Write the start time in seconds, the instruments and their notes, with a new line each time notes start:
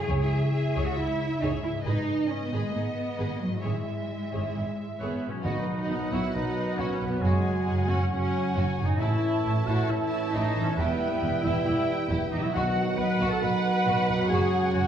Already playing: harp C#3 G#3 G#4, cello section G#4
0.00 harp E4
0.05 timpani C#3, harp C#5
0.09 double bass section C#2, viola section G#4, violin section C#5 E5
0.52 cello section G#4
0.75 double bass section C#2, viola section G#4, violin section C#5
0.86 cello section F#4
0.96 double bass section C#2, cello section E4, violin section E4, viola section G#4
1.41 double bass section C#2, cello section D#4, viola section G#4, violin section C#5
1.63 cello section E4
1.68 harp G#2
1.72 harp G#3
1.77 harp D#4
1.81 harp B4, violin section D#5
1.86 double bass section G#1, cello section D#4, viola section G#4, violin section B4
2.29 cello section C#4
2.45 cello section B3
2.53 double bass section G#1, viola section G#4, violin section B4
2.59 cello section G#3
2.74 double bass section G#1, cello section B3, violin section D#4, viola section G#4
3.17 double bass section G#1, viola section G#4, violin section B4
3.41 cello section F#3
3.46 harp G#2
3.50 harp G#3
3.55 harp E4
3.59 harp C#5, violin section C#5
3.64 double bass section G#1, cello section G#3, viola section G#4, violin section E5
4.32 double bass section G#1, viola section G#4, violin section C#5
4.54 double bass section G#1, violin section E4, viola section G#4
4.99 double bass section G#1, viola section B3 G#4, oboe B4, violin section C#5
5.27 harp B2, viola section C#4, oboe C#5
5.32 harp F#3
5.36 harp F#4
5.41 timpani B2, viola section D#4, violin section F#4 D#5, harp B4, oboe D#5, flute B5
5.45 double bass section B1, cello section B2, trombone section D#3 F#3, french horn section B3 F#4, clarinet B4, violin section F#5
5.89 double bass section B1, cello section B2, violin section D#5
6.11 double bass section B1, cello section B2, viola section E4, violin section F#4, oboe E5
6.33 double bass section B1, cello section B2, viola section D#4, violin section B4, clarinet B4, oboe D#5, flute B5
6.77 double bass section B1, cello section B2, viola section C#4, violin section F#4, oboe C#5
7.00 double bass section B1, cello section B2, violin section B4
7.04 harp F#2, viola section B3, oboe B4
7.08 harp G#3
7.13 harp F#4
7.18 harp C#5, flute G#5
7.22 double bass section F#1, cello section F#2, trombone section C#3, viola section G#3, french horn section C#4, violin section F#4 F#5 G#5, oboe G#4, clarinet C#5
7.67 double bass section F#1, cello section F#2, violin section C#5
7.89 double bass section F#1, cello section F#2, viola section C#4, violin section F#4, oboe C#5
8.11 double bass section F#1, cello section F#2, viola section C#4, violin section G#4, oboe C#5, clarinet C#5, flute G#5
8.55 double bass section F#1, cello section F#2, viola section C#4, violin section F#4, oboe C#5, clarinet C#5, flute G#5
8.78 double bass section F#1, cello section F#2, harp A2, violin section G#4
8.85 harp A3, viola section D#4, oboe D#5
8.91 harp E4
8.96 viola section E4, harp C#5
9.00 double bass section A1, cello section A2, trombone section E3 A3, violin section E4 E5 A5, french horn section E4, clarinet C#5, oboe E5, flute A5
9.44 double bass section A1, cello section A2, violin section C#5
9.66 double bass section A1, cello section A2, violin section E4, viola section F#4, oboe F#5
9.88 double bass section A1, cello section A2, viola section E4, violin section A4, clarinet C#5, oboe E5, flute A5
10.32 double bass section A1, cello section A2, viola section D#4, violin section E4, oboe D#5
10.56 double bass section A1, cello section A2, harp E3, violin section A4
10.64 harp G3, viola section C#4, oboe C#5
10.68 harp E4
10.73 harp B4
10.77 double bass section E1, cello section E2, trombone section G3, viola section B3, french horn section B3, violin section E4 G5, oboe B4, clarinet E5, flute G5
11.22 double bass section E1, cello section E2, violin section B4
11.43 double bass section E1, cello section E2, violin section E4, viola section E4, oboe E5
11.65 double bass section E1, cello section E2, viola section E4, violin section G4, oboe E5, clarinet E5, flute G5
12.10 double bass section E1, cello section E2, violin section E4
12.31 double bass section E1, cello section E2, viola section D#4, violin section G4, oboe D#5
12.36 harp B2
12.40 harp F#3, viola section E4, oboe E5
12.45 harp D#4
12.49 harp B4
12.53 double bass section B1, cello section B2, timpani B2, trombone section D#3 F#3, french horn section B3 F#4, viola section F#4, violin section F#4 F#5, clarinet D#5, flute F#5, oboe F#5
12.97 double bass section B1, cello section B2, viola section B4, clarinet D#5, violin section D#5, flute F#5, oboe B5
13.20 double bass section B1, cello section B2, violin section F#4
13.30 viola section A4, oboe A5
13.42 double bass section B1, cello section B2, viola section B4, violin section B4, clarinet D#5, flute F#5, oboe B5
13.86 double bass section B1, cello section B2, violin section F#4
14.08 double bass section B1, harp F#2, cello section B2, violin section B4
14.16 harp G#3
14.21 harp C#4
14.25 harp C#5, flute F#5
14.29 double bass section F#1, cello section F#2, trombone section C#3, french horn section C#4, violin section F#4 G#5, viola section G#4, clarinet C#5, oboe G#5
14.72 double bass section F#1, cello section F#2, viola section F#4, violin section C#5, clarinet C#5, flute F#5, oboe F#5